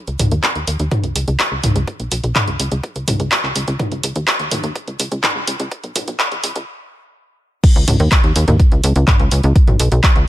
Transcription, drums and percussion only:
0.07 closed hi-hat
0.19 mid tom, open hi-hat
0.31 closed hi-hat
0.43 kick, clap, closed hi-hat
0.55 closed hi-hat
0.67 open hi-hat
0.80 closed hi-hat
0.91 kick, closed hi-hat, mid tom
1.04 closed hi-hat
1.16 open hi-hat
1.28 closed hi-hat
1.39 kick, clap, closed hi-hat
1.64 mid tom, open hi-hat
1.76 closed hi-hat
1.87 kick, closed hi-hat
2.00 closed hi-hat
2.12 open hi-hat
2.24 closed hi-hat
2.35 kick, clap, closed hi-hat, mid tom
2.48 closed hi-hat
2.60 open hi-hat
2.72 closed hi-hat
2.83 kick, closed hi-hat
2.96 closed hi-hat
3.08 mid tom, open hi-hat
3.20 closed hi-hat
3.31 kick, clap, closed hi-hat
3.44 clap
3.56 open hi-hat
3.68 closed hi-hat
3.79 kick, closed hi-hat, mid tom
3.92 closed hi-hat
4.03 open hi-hat
4.16 closed hi-hat
4.27 kick, clap, closed hi-hat
4.39 closed hi-hat
4.51 mid tom, open hi-hat
4.64 closed hi-hat
4.75 kick, closed hi-hat
4.88 closed hi-hat
5.00 open hi-hat
5.12 closed hi-hat
5.23 kick, clap, closed hi-hat, mid tom
5.47 open hi-hat
5.60 closed hi-hat
5.71 kick, closed hi-hat
5.84 closed hi-hat
5.96 mid tom, open hi-hat
6.08 closed hi-hat
6.20 kick, clap, closed hi-hat
6.32 closed hi-hat
6.44 open hi-hat
6.56 closed hi-hat
7.64 kick, closed hi-hat, crash
7.76 closed hi-hat
7.88 mid tom, open hi-hat
8.00 closed hi-hat
8.12 kick, clap, closed hi-hat
8.24 closed hi-hat
8.36 open hi-hat
8.48 closed hi-hat, mid tom
8.60 kick, closed hi-hat
8.72 closed hi-hat
8.84 open hi-hat
8.96 closed hi-hat
9.08 kick, clap, closed hi-hat, mid tom
9.20 closed hi-hat
9.31 open hi-hat
9.44 closed hi-hat
9.56 kick, closed hi-hat
9.68 closed hi-hat, mid tom
9.80 open hi-hat
9.92 closed hi-hat
10.04 kick, clap, closed hi-hat
10.16 closed hi-hat

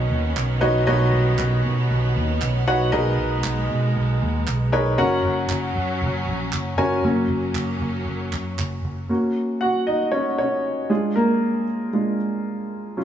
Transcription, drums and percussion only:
0.37 clap
1.39 clap
2.42 clap
3.44 clap
4.47 clap
5.49 clap
6.53 clap
7.55 clap
8.33 clap
8.59 clap

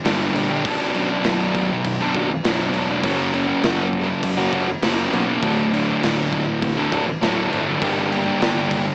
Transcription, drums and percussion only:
0.05 snare, crash
0.36 crash
0.65 kick, crash
0.95 crash
1.24 snare, crash
1.55 kick, crash
1.84 kick, crash
2.14 kick, crash
2.44 snare, crash
2.73 crash
3.03 kick, crash
3.34 crash
3.63 snare, crash
3.93 kick, crash
4.23 kick, crash
4.53 kick, crash
4.83 snare, crash
5.13 crash
5.42 kick, crash
5.73 crash
6.03 snare, crash
6.32 kick, crash
6.62 kick, crash
6.92 kick, crash
7.22 snare, crash
7.53 crash
7.82 kick, crash
8.12 crash
8.42 snare, crash
8.71 kick, crash

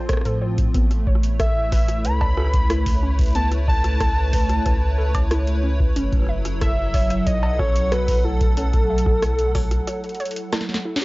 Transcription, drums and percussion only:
0.09 kick, cross-stick, closed hi-hat
0.13 cross-stick
0.17 cross-stick
0.21 cross-stick
0.25 closed hi-hat
0.58 kick, closed hi-hat
0.74 kick, closed hi-hat
0.91 cross-stick, closed hi-hat
1.07 kick
1.15 cross-stick
1.23 closed hi-hat
1.40 kick, cross-stick, closed hi-hat
1.72 kick, cross-stick, open hi-hat
1.89 cross-stick, closed hi-hat
2.05 closed hi-hat
2.21 kick, cowbell
2.37 cross-stick
2.40 cross-stick
2.42 cross-stick
2.44 cross-stick
2.47 cross-stick
2.49 cross-stick
2.51 kick, cross-stick, closed hi-hat
2.70 cross-stick, closed hi-hat
2.86 kick, open hi-hat
3.19 kick, closed hi-hat
3.21 closed hi-hat
3.23 closed hi-hat
3.26 closed hi-hat
3.28 closed hi-hat
3.31 closed hi-hat
3.33 closed hi-hat
3.35 closed hi-hat
3.52 cross-stick, closed hi-hat
3.68 kick
3.84 cross-stick, closed hi-hat
4.00 kick, cross-stick, closed hi-hat
4.33 kick, open hi-hat
4.49 cross-stick, closed hi-hat
4.66 kick, cross-stick, closed hi-hat
5.15 kick, closed hi-hat, cowbell
5.31 cross-stick, closed hi-hat
5.47 closed hi-hat
5.80 kick
5.96 closed hi-hat
6.12 kick, cross-stick, closed hi-hat
6.15 cross-stick
6.17 cross-stick
6.19 cross-stick
6.22 cross-stick
6.24 cross-stick
6.26 cross-stick
6.45 cross-stick, closed hi-hat
6.61 kick, cross-stick, closed hi-hat
6.94 kick, open hi-hat
7.10 cross-stick, closed hi-hat
7.27 kick, closed hi-hat
7.43 cowbell
7.59 kick, cross-stick
7.76 closed hi-hat
7.92 cross-stick, closed hi-hat
8.08 kick, open hi-hat
8.41 kick, closed hi-hat
8.57 closed hi-hat
8.73 kick, cross-stick, closed hi-hat
8.98 closed hi-hat
9.06 kick, cross-stick
9.22 cross-stick, closed hi-hat
9.39 closed hi-hat
9.55 kick, cross-stick, open hi-hat
9.71 cross-stick, closed hi-hat
9.87 cross-stick, closed hi-hat
10.04 closed hi-hat
10.09 closed hi-hat
10.15 closed hi-hat
10.20 closed hi-hat
10.25 closed hi-hat
10.31 closed hi-hat
10.36 closed hi-hat
10.53 cross-stick, snare, closed hi-hat, cowbell
10.61 snare
10.69 snare
10.74 snare
10.77 snare
10.96 snare
11.02 closed hi-hat

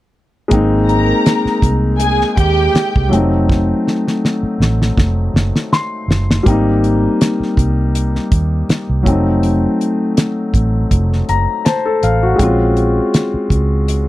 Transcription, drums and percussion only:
0.51 kick, closed hi-hat
0.89 closed hi-hat
1.26 snare, closed hi-hat
1.46 snare
1.62 kick, closed hi-hat
2.00 closed hi-hat
2.21 snare
2.37 kick, closed hi-hat
2.75 snare, closed hi-hat
2.96 kick
3.13 closed hi-hat
3.49 kick, snare
3.87 snare
4.08 snare
4.25 snare
4.62 snare
4.82 snare
4.97 kick, snare
5.36 snare
5.56 snare
5.73 snare
6.11 snare
6.31 snare
6.46 kick, closed hi-hat
6.84 closed hi-hat
7.21 snare, closed hi-hat
7.43 snare
7.57 kick, closed hi-hat
7.95 closed hi-hat
8.15 snare
8.32 kick, closed hi-hat
8.69 snare, closed hi-hat
9.06 kick, closed hi-hat
9.43 closed hi-hat
9.81 closed hi-hat
10.17 snare, closed hi-hat
10.54 kick, closed hi-hat
10.91 kick, closed hi-hat
11.13 snare
11.29 closed hi-hat
11.66 snare, closed hi-hat
12.03 closed hi-hat
12.39 kick, closed hi-hat
12.77 closed hi-hat
13.14 snare, closed hi-hat
13.50 kick, closed hi-hat
13.88 closed hi-hat

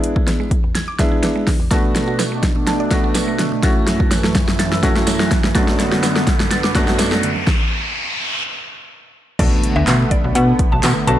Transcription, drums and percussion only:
0.04 closed hi-hat
0.16 kick
0.27 snare, closed hi-hat
0.51 kick, closed hi-hat
0.75 snare, closed hi-hat
0.99 kick, snare, closed hi-hat
1.23 snare, closed hi-hat
1.47 kick, snare, open hi-hat
1.71 kick, snare, closed hi-hat
1.95 snare, closed hi-hat
2.19 snare, closed hi-hat, tambourine
2.43 kick, snare, closed hi-hat
2.67 snare, closed hi-hat
2.91 kick, snare, closed hi-hat
3.15 snare, closed hi-hat, tambourine
3.39 snare, closed hi-hat
3.63 kick, snare, closed hi-hat
3.87 snare, closed hi-hat
4.00 kick
4.11 snare, closed hi-hat, tambourine
4.24 snare
4.35 kick, snare, closed hi-hat
4.48 snare
4.60 snare, closed hi-hat
4.72 snare
4.83 kick, snare, closed hi-hat
4.96 snare
5.07 snare, closed hi-hat, tambourine
5.20 snare
5.31 kick, snare, closed hi-hat
5.44 snare
5.55 kick, snare, closed hi-hat
5.68 snare
5.79 snare, closed hi-hat
5.92 snare
6.03 snare, closed hi-hat, tambourine
6.16 snare
6.27 kick, snare, closed hi-hat
6.40 snare
6.51 snare, closed hi-hat
6.64 snare
6.75 kick, snare, closed hi-hat
6.88 snare
6.99 snare, closed hi-hat, tambourine
7.12 snare
7.23 closed hi-hat
7.47 kick, snare
9.39 kick, closed hi-hat, crash
9.64 closed hi-hat
9.87 snare, clap, closed hi-hat, tambourine
10.11 kick, closed hi-hat
10.35 closed hi-hat
10.59 kick, closed hi-hat
10.83 snare, clap, closed hi-hat, tambourine
11.08 closed hi-hat

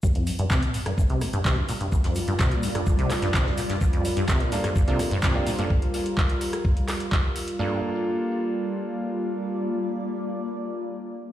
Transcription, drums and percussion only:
0.03 kick, shaker
0.15 closed hi-hat
0.27 open hi-hat, shaker
0.39 closed hi-hat
0.50 kick, snare, clap, shaker
0.62 closed hi-hat
0.74 snare, open hi-hat, shaker
0.86 cross-stick, snare, closed hi-hat
0.98 kick, shaker
1.10 closed hi-hat
1.21 cross-stick, open hi-hat, shaker
1.33 closed hi-hat
1.45 kick, snare, clap, shaker
1.69 open hi-hat, shaker
1.81 closed hi-hat
1.92 kick, shaker
2.04 snare, closed hi-hat
2.15 open hi-hat, shaker
2.28 closed hi-hat
2.39 kick, snare, clap, shaker
2.51 closed hi-hat
2.63 open hi-hat, shaker
2.75 cross-stick, closed hi-hat
2.86 kick, shaker
2.99 closed hi-hat
3.10 cross-stick, clap, open hi-hat, shaker
3.22 snare, closed hi-hat
3.33 kick, snare, clap, shaker
3.47 snare
3.58 open hi-hat, shaker
3.70 snare, closed hi-hat
3.81 kick, shaker
3.93 closed hi-hat
4.05 open hi-hat, shaker
4.17 closed hi-hat
4.28 kick, snare, clap, shaker
4.40 closed hi-hat
4.51 snare, open hi-hat, shaker
4.64 cross-stick, snare, closed hi-hat
4.76 kick, shaker
4.88 closed hi-hat
4.99 cross-stick, open hi-hat, shaker
5.11 closed hi-hat
5.22 kick, snare, clap, shaker
5.47 open hi-hat, shaker
5.59 closed hi-hat
5.70 kick
5.82 closed hi-hat
5.94 open hi-hat
6.06 closed hi-hat
6.17 kick, clap
6.30 closed hi-hat
6.41 open hi-hat
6.53 cross-stick, closed hi-hat
6.65 kick
6.77 closed hi-hat
6.88 cross-stick, clap, open hi-hat
7.00 closed hi-hat
7.12 kick, clap
7.36 open hi-hat
7.48 closed hi-hat

